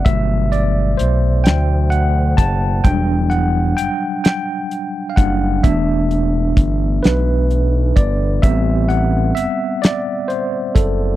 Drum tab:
HH |xxxxxx|xxxxxx|xxxxxx|xxxxxx|
SD |---o--|---o--|---o--|---o--|
BD |o----o|o----o|o-o--o|o----o|